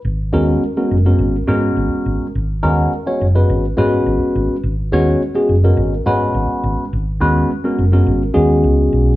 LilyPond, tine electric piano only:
\new Staff \with { instrumentName = "Tine electric piano" } { \time 4/4 \key gis \minor \tempo 4 = 105 r8 <gis b cis' fis' ais'>8 r16 <gis b cis' fis' ais'>16 r16 <gis b cis' fis' ais'>8 r16 <gis b cis' fis' ais'>4~ <gis b cis' fis' ais'>16 r16 | r8 <gis b cis' fis' ais'>8 r16 <gis b cis' fis' cis''>16 r16 <gis b cis' fis' b'>8 r16 <gis b cis' fis' b'>4~ <gis b cis' fis' b'>16 r16 | r8 <gis b cis' fis' cis''>8 r16 <gis b cis' fis' gis'>16 r16 <gis b cis' fis' ais'>8 r16 <gis b cis' fis' b'>4~ <gis b cis' fis' b'>16 r16 | r8 <gis b cis' fis' b'>8 r16 <gis b cis' fis' ais'>16 r16 <gis b cis' fis' ais'>8 r16 <gis b cis' fis' gis'>4~ <gis b cis' fis' gis'>16 r16 | }